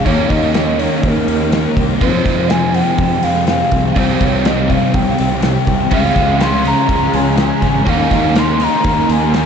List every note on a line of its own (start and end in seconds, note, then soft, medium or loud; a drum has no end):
0.05 0.25 D#2 medium
0.05 0.53 D#3 medium
0.05 0.30 A#3 loud
0.05 2.01 C#4 medium
0.05 0.28 D#4 loud
0.05 2.01 G4 medium
0.05 0.31 C#5 medium
0.05 kick medium
0.05 open hi-hat medium
0.29 0.86 D#2 medium
0.29 0.54 A#3 medium
0.29 0.56 D#4 medium
0.29 0.54 D#5 medium
0.29 kick medium
0.29 open hi-hat medium
0.54 1.03 D#3 medium
0.54 0.79 A#3 medium
0.54 0.78 D#4 medium
0.54 0.81 D#5 medium
0.54 snare loud
0.54 open hi-hat medium
0.78 1.27 A#3 medium
0.78 1.26 D#4 medium
0.78 1.07 C#5 medium
0.78 open hi-hat medium
1.03 1.22 D#2 medium
1.03 1.10 C5 medium
1.03 kick loud
1.03 open hi-hat medium
1.09 1.78 A#4 medium
1.26 1.65 D#2 medium
1.26 1.51 A#3 medium
1.26 1.53 D#4 medium
1.26 open hi-hat medium
1.51 1.99 D#3 medium
1.51 2.00 A#3 medium
1.51 2.02 D#4 medium
1.51 snare loud
1.51 open hi-hat medium
1.77 1.95 C2 medium
1.77 kick medium
1.77 open hi-hat medium
1.99 2.47 F2 medium
1.99 2.20 F2 medium
1.99 2.25 C3 loud
1.99 2.23 F3 loud
1.99 3.95 G#3 medium
1.99 3.97 C4 medium
1.99 2.51 C5 loud
1.99 kick loud
1.99 open hi-hat medium
2.03 3.96 F4 medium
2.24 2.81 F2 medium
2.24 2.48 C3 medium
2.24 2.49 F3 medium
2.24 kick medium
2.24 snare soft
2.24 open hi-hat medium
2.48 2.98 F2 medium
2.48 2.73 C3 medium
2.48 2.71 F3 medium
2.48 2.77 G#5 loud
2.48 snare loud
2.48 open hi-hat medium
2.73 3.24 C3 medium
2.73 3.21 F3 medium
2.73 3.25 G5 loud
2.73 open hi-hat medium
2.98 3.17 F2 medium
2.98 kick medium
2.98 open hi-hat medium
3.23 3.61 F2 medium
3.23 3.46 C3 medium
3.23 3.47 F3 medium
3.23 3.47 F5 loud
3.23 open hi-hat medium
3.46 3.95 F2 medium
3.46 3.94 C3 medium
3.46 3.96 F3 medium
3.46 3.99 F5 medium
3.46 snare medium
3.46 open hi-hat medium
3.71 3.91 C2 medium
3.71 kick medium
3.71 open hi-hat medium
3.95 4.15 C2 medium
3.95 4.44 C3 medium
3.95 5.91 D#3 medium
3.95 4.21 G3 medium
3.95 4.19 C4 loud
3.95 5.92 G4 medium
3.95 4.01 C#5 medium
3.95 kick medium
3.95 open hi-hat medium
4.00 4.25 C5 medium
4.20 4.77 C2 medium
4.20 4.45 G3 medium
4.20 4.47 C4 medium
4.20 4.49 C#5 medium
4.20 kick medium
4.20 open hi-hat medium
4.45 4.94 C3 medium
4.45 4.71 G3 medium
4.45 4.69 C4 medium
4.45 4.73 D#5 medium
4.45 snare loud
4.45 open hi-hat medium
4.70 5.19 G3 medium
4.70 5.17 C4 medium
4.70 4.97 F5 medium
4.70 kick medium
4.70 open hi-hat medium
4.94 5.13 C2 medium
4.94 5.68 G5 medium
4.94 kick loud
4.94 open hi-hat medium
5.18 5.56 C2 medium
5.18 5.43 G3 medium
5.18 5.44 C4 medium
5.18 open hi-hat medium
5.42 5.91 C3 medium
5.42 5.91 G3 medium
5.42 5.92 C4 medium
5.42 snare loud
5.42 open hi-hat medium
5.67 5.86 C2 loud
5.67 kick medium
5.67 open hi-hat medium
5.91 6.11 C#2 medium
5.91 6.39 C#3 medium
5.91 7.85 F3 medium
5.91 6.17 G#3 medium
5.91 6.15 C#4 loud
5.91 7.88 F4 loud
5.91 6.43 F5 loud
5.91 kick loud
5.91 open hi-hat medium
6.15 6.72 C#2 medium
6.15 6.41 G#3 medium
6.15 6.41 C#4 medium
6.15 kick medium
6.15 open hi-hat medium
6.40 6.89 C#3 medium
6.40 6.65 G#3 medium
6.40 6.64 C#4 medium
6.40 6.66 C6 loud
6.40 snare loud
6.40 open hi-hat medium
6.64 6.87 C#3 medium
6.64 7.15 G#3 medium
6.64 7.11 C#4 medium
6.64 7.17 A#5 loud
6.64 open hi-hat medium
6.88 7.08 C#2 medium
6.88 7.36 C#3 medium
6.88 7.37 G#3 loud
6.88 7.36 C#4 loud
6.88 kick loud
6.88 open hi-hat medium
7.13 7.51 C#2 medium
7.13 7.38 G#3 medium
7.13 7.38 C#4 medium
7.13 7.39 G#5 loud
7.13 open hi-hat medium
7.37 7.85 C#3 medium
7.37 7.86 G#3 medium
7.37 7.86 C#4 medium
7.37 7.90 G#5 medium
7.37 snare medium
7.37 open hi-hat medium
7.61 7.81 G#1 medium
7.61 7.85 C#3 medium
7.61 7.85 G#3 medium
7.61 7.86 C#4 medium
7.61 kick medium
7.61 open hi-hat medium
7.86 8.06 D#2 medium
7.86 8.32 D#3 medium
7.86 8.10 A#3 loud
7.86 9.46 C#4 medium
7.86 8.09 D#4 medium
7.86 9.46 G4 loud
7.86 8.39 F5 loud
7.86 kick loud
7.86 open hi-hat medium
8.09 8.67 D#2 medium
8.09 8.34 A#3 medium
8.09 8.35 D#4 medium
8.09 kick medium
8.09 snare soft
8.09 open hi-hat medium
8.34 8.84 D#3 medium
8.34 8.60 A#3 medium
8.34 8.59 D#4 medium
8.34 snare loud
8.34 open hi-hat medium
8.38 8.66 C6 loud
8.59 8.83 D#3 medium
8.59 9.09 A#3 medium
8.59 9.07 D#4 medium
8.59 open hi-hat medium
8.64 9.14 A#5 loud
8.84 9.03 D#2 medium
8.84 9.32 D#3 medium
8.84 9.33 A#3 loud
8.84 9.34 D#4 loud
8.84 kick loud
8.84 open hi-hat medium
9.08 9.46 D#2 medium
9.08 9.32 A#3 medium
9.08 9.34 D#4 medium
9.08 open hi-hat medium
9.12 9.36 G#5 medium
9.32 9.46 D#3 medium
9.32 9.46 A#3 medium
9.32 9.46 D#4 medium
9.32 snare loud
9.32 open hi-hat medium
9.37 9.46 G#5 medium